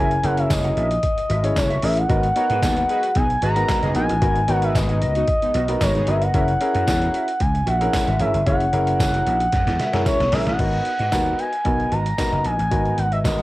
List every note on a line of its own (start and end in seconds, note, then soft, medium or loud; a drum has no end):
0.00 0.17 F#1 loud
0.00 0.13 C#4 medium
0.00 0.13 E4 medium
0.00 0.13 F#4 medium
0.00 0.13 G#4 medium
0.00 0.10 A#4 loud
0.00 0.13 A#4 loud
0.00 0.26 G#5 loud
0.11 muted clean electric guitar stroke soft
0.11 closed hi-hat medium
0.23 0.44 F#1 loud
0.23 0.85 C#4 medium
0.23 0.85 E4 medium
0.23 0.85 G#4 medium
0.23 0.86 A#4 loud
0.23 0.40 F#5 loud
0.23 muted clean electric guitar stroke soft
0.23 closed hi-hat medium
0.37 0.49 F#4 medium
0.37 0.49 A#4 medium
0.37 0.53 E5 medium
0.37 0.49 F#5 medium
0.37 closed hi-hat medium
0.50 0.70 F#1 loud
0.50 1.59 D#5 loud
0.50 muted clean electric guitar stroke soft
0.50 kick loud
0.50 snare loud
0.50 clap loud
0.50 closed hi-hat medium
0.50 tambourine loud
0.64 0.75 F#4 medium
0.64 0.76 A#4 medium
0.64 0.75 F#5 medium
0.64 closed hi-hat medium
0.76 0.97 A#1 medium
0.76 0.92 F#4 medium
0.76 0.90 A#4 medium
0.76 0.89 E5 medium
0.76 closed hi-hat medium
0.90 muted clean electric guitar stroke soft
0.90 closed hi-hat medium
1.03 kick loud
1.03 closed hi-hat medium
1.17 muted clean electric guitar stroke soft
1.17 closed hi-hat medium
1.29 1.50 G#1 medium
1.29 1.46 F#4 medium
1.29 1.43 A#4 medium
1.29 1.42 E5 loud
1.29 closed hi-hat medium
1.43 1.66 C#4 medium
1.43 1.67 E4 medium
1.43 1.67 G#4 medium
1.43 1.67 C#5 medium
1.43 muted clean electric guitar stroke soft
1.43 closed hi-hat medium
1.56 1.76 F#1 loud
1.56 1.85 C#5 loud
1.56 kick loud
1.56 snare loud
1.56 clap medium
1.56 closed hi-hat loud
1.56 tambourine medium
1.70 1.81 F#4 medium
1.70 1.82 A#4 medium
1.70 1.82 E5 medium
1.70 closed hi-hat medium
1.82 2.03 A1 medium
1.82 1.99 C#4 medium
1.82 1.99 E4 medium
1.82 1.99 G#4 medium
1.82 1.99 A#4 medium
1.82 1.99 E5 medium
1.82 muted clean electric guitar stroke soft
1.82 open hi-hat medium
1.97 3.18 F#5 loud
1.97 muted clean electric guitar stroke medium
1.97 closed hi-hat medium
2.09 2.29 G#1 loud
2.09 2.25 B3 medium
2.09 2.25 D#4 medium
2.09 2.25 F#4 medium
2.09 2.26 A#4 loud
2.09 2.23 B4 medium
2.09 2.22 D#5 loud
2.09 kick loud
2.09 closed hi-hat loud
2.23 muted clean electric guitar stroke medium
2.23 closed hi-hat medium
2.36 2.98 B3 medium
2.36 2.98 D#4 medium
2.36 2.47 F#4 medium
2.36 2.98 F#4 medium
2.36 2.47 A#4 medium
2.36 2.98 A#4 loud
2.36 2.47 C#5 medium
2.36 muted clean electric guitar stroke soft
2.36 closed hi-hat medium
2.50 2.60 G#2 loud
2.50 2.60 F#4 medium
2.50 2.61 F#4 medium
2.50 2.60 G#4 medium
2.50 2.61 B4 medium
2.50 2.60 B4 loud
2.50 2.61 F#5 medium
2.50 closed hi-hat medium
2.62 2.83 D#2 loud
2.62 2.74 B3 medium
2.62 2.74 D#4 medium
2.62 2.74 G#4 medium
2.62 kick loud
2.62 snare loud
2.62 clap loud
2.62 closed hi-hat medium
2.62 tambourine medium
2.76 2.88 F#4 medium
2.76 2.88 B4 medium
2.76 2.88 F#5 medium
2.76 closed hi-hat medium
2.89 3.05 F#4 medium
2.89 3.10 F#4 loud
2.89 3.10 G#4 loud
2.89 3.11 B4 loud
2.89 3.03 B4 medium
2.89 3.02 D#5 medium
2.89 closed hi-hat medium
3.03 muted clean electric guitar stroke soft
3.03 closed hi-hat medium
3.15 3.36 B1 loud
3.15 3.27 B3 medium
3.15 3.27 D#4 medium
3.15 3.27 G#4 loud
3.15 3.42 G#5 loud
3.15 kick loud
3.15 closed hi-hat medium
3.30 muted clean electric guitar stroke soft
3.30 closed hi-hat medium
3.42 3.62 G#1 medium
3.42 3.58 F#4 medium
3.42 3.64 F#4 loud
3.42 3.64 G#4 loud
3.42 3.56 B4 medium
3.42 3.64 B4 loud
3.42 3.55 D#5 medium
3.42 3.92 A#5 loud
3.42 closed hi-hat medium
3.56 3.79 B3 medium
3.56 3.79 D#4 medium
3.56 3.79 F#4 medium
3.56 3.79 A#4 medium
3.56 muted clean electric guitar stroke medium
3.56 closed hi-hat medium
3.68 muted clean electric guitar stroke soft
3.68 kick loud
3.68 snare loud
3.68 clap medium
3.68 closed hi-hat loud
3.68 tambourine medium
3.83 3.92 F#1 medium
3.83 4.04 B3 medium
3.83 4.05 D#4 medium
3.83 3.94 F#4 medium
3.83 4.05 G#4 loud
3.83 3.95 B4 medium
3.83 3.95 D#5 medium
3.83 closed hi-hat medium
3.95 4.06 A#1 medium
3.95 4.11 B3 medium
3.95 4.11 D#4 medium
3.95 4.08 F#4 medium
3.95 4.11 F#4 medium
3.95 4.11 A#4 medium
3.95 4.08 B4 medium
3.95 4.08 D#5 medium
3.95 4.51 G#5 loud
3.95 closed hi-hat medium
4.09 4.19 A1 loud
4.09 muted clean electric guitar stroke soft
4.09 closed hi-hat medium
4.21 4.42 G#1 loud
4.21 4.38 B3 medium
4.21 4.38 D#4 medium
4.21 4.38 F#4 medium
4.21 4.38 A#4 loud
4.21 4.35 B4 medium
4.21 4.35 D#5 loud
4.21 kick loud
4.21 closed hi-hat loud
4.36 muted clean electric guitar stroke soft
4.36 closed hi-hat medium
4.48 4.68 G#1 medium
4.48 5.10 B3 loud
4.48 5.10 D#4 medium
4.48 5.10 F#4 medium
4.48 4.60 F#4 medium
4.48 5.10 A#4 loud
4.48 4.60 A#4 medium
4.48 4.60 C#5 loud
4.48 4.65 F#5 loud
4.48 muted clean electric guitar stroke soft
4.48 closed hi-hat medium
4.62 4.73 F#4 medium
4.62 4.73 G#4 medium
4.62 4.74 B4 medium
4.62 4.73 B4 loud
4.62 4.77 E5 medium
4.62 4.74 F#5 medium
4.62 closed hi-hat medium
4.75 5.03 G#1 loud
4.75 4.86 B3 medium
4.75 4.86 D#4 medium
4.75 4.86 G#4 loud
4.75 5.83 D#5 loud
4.75 kick loud
4.75 snare loud
4.75 clap medium
4.75 closed hi-hat medium
4.75 tambourine loud
4.89 4.99 B3 medium
4.89 4.99 D#4 medium
4.89 5.00 F#4 medium
4.89 4.99 G#4 medium
4.89 5.00 B4 medium
4.89 5.00 F#5 medium
4.89 closed hi-hat medium
5.01 5.22 C#2 medium
5.01 5.17 F#4 medium
5.01 5.15 B4 medium
5.01 5.14 D#5 medium
5.01 closed hi-hat medium
5.15 5.26 B3 loud
5.15 5.26 D#4 loud
5.15 5.26 F#4 loud
5.15 muted clean electric guitar stroke medium
5.15 closed hi-hat medium
5.28 kick loud
5.28 closed hi-hat medium
5.42 5.52 G#3 medium
5.42 5.52 B3 medium
5.42 5.52 D#4 medium
5.42 muted clean electric guitar stroke soft
5.42 closed hi-hat medium
5.54 5.75 B1 medium
5.54 5.66 B3 medium
5.54 5.66 D#4 medium
5.54 5.70 F#4 medium
5.54 5.66 F#4 medium
5.54 5.68 B4 loud
5.54 5.67 D#5 medium
5.54 closed hi-hat medium
5.68 5.91 B3 medium
5.68 5.91 D#4 medium
5.68 5.91 F#4 medium
5.68 5.92 A#4 medium
5.68 muted clean electric guitar stroke soft
5.68 closed hi-hat medium
5.81 6.01 G#1 loud
5.81 5.97 F#4 medium
5.81 5.95 B4 medium
5.81 6.10 C#5 medium
5.81 5.94 D#5 loud
5.81 kick loud
5.81 snare loud
5.81 clap medium
5.81 closed hi-hat loud
5.81 tambourine medium
5.95 6.16 B3 medium
5.95 6.16 D#4 medium
5.95 6.16 G#4 medium
5.95 muted clean electric guitar stroke medium
5.95 closed hi-hat medium
6.07 6.28 G1 medium
6.07 6.23 B3 medium
6.07 6.24 D#4 medium
6.07 6.24 F#4 medium
6.07 6.24 A#4 medium
6.07 6.24 E5 medium
6.07 closed hi-hat medium
6.22 6.33 F#4 medium
6.22 6.33 B4 medium
6.22 6.33 D#5 medium
6.22 7.42 F#5 loud
6.22 closed hi-hat medium
6.34 6.54 F#1 loud
6.34 6.50 C#4 loud
6.34 6.50 E4 medium
6.34 6.50 F#4 medium
6.34 6.50 G#4 medium
6.34 6.51 A#4 loud
6.34 6.48 A#4 medium
6.34 6.47 E5 medium
6.34 kick loud
6.34 closed hi-hat loud
6.48 muted clean electric guitar stroke soft
6.48 closed hi-hat medium
6.61 7.23 C#4 medium
6.61 7.23 E4 medium
6.61 7.23 G#4 medium
6.61 7.23 A#4 loud
6.61 muted clean electric guitar stroke soft
6.61 closed hi-hat medium
6.75 6.84 F#2 loud
6.75 6.86 F#4 medium
6.75 6.86 A#4 medium
6.75 6.86 F#5 medium
6.75 closed hi-hat medium
6.87 7.07 E2 loud
6.87 muted clean electric guitar stroke soft
6.87 kick loud
6.87 snare loud
6.87 clap loud
6.87 closed hi-hat medium
6.87 tambourine loud
7.01 7.12 F#4 medium
7.01 7.13 A#4 medium
7.01 7.13 F#5 medium
7.01 closed hi-hat medium
7.14 7.30 F#4 medium
7.14 7.28 A#4 medium
7.14 7.27 E5 medium
7.14 closed hi-hat medium
7.28 muted clean electric guitar stroke soft
7.28 closed hi-hat medium
7.40 7.60 C#2 loud
7.40 7.69 G#5 loud
7.40 kick loud
7.40 closed hi-hat medium
7.54 muted clean electric guitar stroke soft
7.54 closed hi-hat medium
7.67 7.87 A#1 medium
7.67 7.83 F#4 medium
7.67 7.80 A#4 loud
7.67 7.80 E5 loud
7.67 8.22 F#5 loud
7.67 closed hi-hat medium
7.81 8.04 C#4 medium
7.81 8.04 E4 medium
7.81 8.04 G#4 medium
7.81 8.04 A#4 loud
7.81 muted clean electric guitar stroke soft
7.81 closed hi-hat medium
7.93 muted clean electric guitar stroke soft
7.93 kick loud
7.93 snare loud
7.93 clap medium
7.93 closed hi-hat loud
7.93 tambourine medium
8.07 8.17 G#1 medium
8.07 8.19 F#4 medium
8.07 8.19 A#4 medium
8.07 8.20 E5 medium
8.07 closed hi-hat soft
8.19 8.31 G#1 medium
8.19 8.36 C#4 medium
8.19 8.36 E4 medium
8.19 8.33 F#4 medium
8.19 8.36 G#4 medium
8.19 8.36 A#4 medium
8.19 8.33 A#4 medium
8.19 8.47 E5 medium
8.19 8.33 E5 medium
8.19 closed hi-hat medium
8.34 8.44 G1 medium
8.34 muted clean electric guitar stroke soft
8.34 closed hi-hat medium
8.46 8.67 F#1 loud
8.46 8.62 C#4 medium
8.46 8.63 E4 medium
8.46 8.62 F#4 medium
8.46 8.63 G#4 medium
8.46 8.60 A#4 medium
8.46 8.63 C#5 loud
8.46 8.60 E5 loud
8.46 10.02 F#5 loud
8.46 kick loud
8.46 closed hi-hat loud
8.60 muted clean electric guitar stroke soft
8.60 closed hi-hat medium
8.73 8.93 F#1 loud
8.73 9.35 C#4 loud
8.73 9.35 E4 medium
8.73 9.35 G#4 medium
8.73 9.35 A#4 loud
8.73 muted clean electric guitar stroke soft
8.73 closed hi-hat medium
8.87 8.98 F#4 medium
8.87 8.99 A#4 medium
8.87 8.98 F#5 medium
8.87 closed hi-hat medium
9.00 9.20 F#1 loud
9.00 muted clean electric guitar stroke medium
9.00 kick loud
9.00 snare loud
9.00 clap loud
9.00 closed hi-hat medium
9.00 tambourine medium
9.14 9.25 F#4 medium
9.14 9.25 A#4 medium
9.14 9.25 F#5 medium
9.14 closed hi-hat medium
9.26 9.46 A#1 medium
9.26 9.42 F#4 medium
9.26 9.40 A#4 loud
9.26 9.39 E5 medium
9.26 closed hi-hat medium
9.40 muted clean electric guitar stroke soft
9.40 closed hi-hat medium
9.52 9.63 F#2 loud
9.52 kick loud
9.52 snare medium
9.52 closed hi-hat medium
9.67 9.76 E2 loud
9.67 muted clean electric guitar stroke soft
9.67 snare medium
9.67 closed hi-hat medium
9.79 9.95 F#4 medium
9.79 9.93 A#4 medium
9.79 9.92 E5 medium
9.79 snare medium
9.79 closed hi-hat medium
9.93 10.03 F#2 medium
9.93 10.16 C#4 loud
9.93 10.16 E4 medium
9.93 10.16 G#4 medium
9.93 10.16 A#4 loud
9.93 muted clean electric guitar stroke medium
9.93 snare medium
9.93 closed hi-hat medium
10.05 10.22 F#4 medium
10.05 10.19 A#4 medium
10.05 10.35 C#5 loud
10.05 10.18 E5 medium
10.05 kick loud
10.05 snare loud
10.05 closed hi-hat loud
10.05 tambourine medium
10.20 10.29 B1 medium
10.20 snare medium
10.20 closed hi-hat medium
10.32 10.43 A#1 loud
10.32 10.48 C#4 medium
10.32 10.48 E4 medium
10.32 10.49 G#4 medium
10.32 10.49 A#4 loud
10.32 10.46 E5 loud
10.32 muted clean electric guitar stroke soft
10.32 snare loud
10.32 open hi-hat medium
10.46 10.56 A1 medium
10.46 10.57 F#4 medium
10.46 10.58 A#4 medium
10.46 10.58 E5 medium
10.46 11.41 F#5 loud
10.46 snare medium
10.46 closed hi-hat medium
10.58 10.79 G#1 loud
10.58 10.90 B3 medium
10.58 10.90 D#4 medium
10.58 10.83 F#4 medium
10.58 10.90 F#4 medium
10.58 10.90 A#4 medium
10.58 10.84 B4 medium
10.58 10.84 D#5 medium
10.58 kick loud
10.58 closed hi-hat loud
10.58 crash medium
10.73 closed hi-hat soft
10.85 muted clean electric guitar stroke soft
10.85 closed hi-hat medium
10.99 11.09 G#2 loud
10.99 11.11 F#4 soft
10.99 11.11 B4 medium
10.99 11.11 D#5 medium
10.99 closed hi-hat medium
11.12 11.32 D#2 medium
11.12 11.43 B3 medium
11.12 11.43 D#4 medium
11.12 11.43 F#4 medium
11.12 11.43 A#4 medium
11.12 muted clean electric guitar stroke soft
11.12 kick loud
11.12 snare loud
11.12 clap medium
11.12 closed hi-hat medium
11.12 tambourine medium
11.26 11.37 F#4 medium
11.26 11.38 B4 medium
11.26 11.39 F#5 medium
11.26 closed hi-hat soft
11.38 11.51 F#4 medium
11.38 11.52 B4 medium
11.38 11.51 D#5 medium
11.38 11.94 G#5 loud
11.38 closed hi-hat medium
11.53 muted clean electric guitar stroke soft
11.53 closed hi-hat soft
11.65 11.85 B1 medium
11.65 11.96 B3 medium
11.65 11.96 D#4 medium
11.65 11.96 F#4 medium
11.65 11.96 A#4 medium
11.65 kick loud
11.65 closed hi-hat medium
11.79 muted clean electric guitar stroke soft
11.79 closed hi-hat soft
11.92 12.12 G#1 medium
11.92 12.08 F#4 medium
11.92 12.06 B4 medium
11.92 12.05 D#5 medium
11.92 12.47 A#5 loud
11.92 closed hi-hat medium
12.06 muted clean electric guitar stroke soft
12.06 closed hi-hat medium
12.18 12.49 B3 medium
12.18 12.49 D#4 medium
12.18 12.49 F#4 medium
12.18 12.49 A#4 medium
12.18 muted clean electric guitar stroke soft
12.18 kick loud
12.18 snare loud
12.18 clap medium
12.18 closed hi-hat medium
12.18 tambourine medium
12.32 12.42 F#1 medium
12.32 12.43 F#4 medium
12.32 12.44 B4 medium
12.32 12.45 D#5 medium
12.32 closed hi-hat soft
12.44 12.55 A#1 medium
12.44 12.57 F#4 medium
12.44 12.58 B4 medium
12.44 12.58 D#5 medium
12.44 13.00 G#5 loud
12.44 closed hi-hat medium
12.59 12.68 A1 medium
12.59 muted clean electric guitar stroke soft
12.59 closed hi-hat medium
12.71 12.91 G#1 medium
12.71 13.02 B3 medium
12.71 13.02 D#4 medium
12.71 12.96 F#4 medium
12.71 13.02 F#4 medium
12.71 13.02 A#4 medium
12.71 12.96 B4 medium
12.71 12.96 D#5 medium
12.71 kick loud
12.71 closed hi-hat loud
12.85 closed hi-hat soft
12.98 13.18 G#1 medium
12.98 13.12 F#5 loud
12.98 muted clean electric guitar stroke soft
12.98 closed hi-hat medium
13.12 13.23 F#4 medium
13.12 13.23 B4 medium
13.12 13.23 D#5 medium
13.12 13.18 E5 medium
13.12 closed hi-hat soft
13.24 13.42 G#1 medium
13.24 13.42 B3 medium
13.24 13.42 D#4 medium
13.24 13.42 F#4 medium
13.24 13.42 A#4 medium
13.24 13.42 D#5 loud
13.24 muted clean electric guitar stroke soft
13.24 kick loud
13.24 snare loud
13.24 clap medium
13.24 closed hi-hat medium
13.24 tambourine medium
13.38 13.42 F#5 medium
13.38 closed hi-hat soft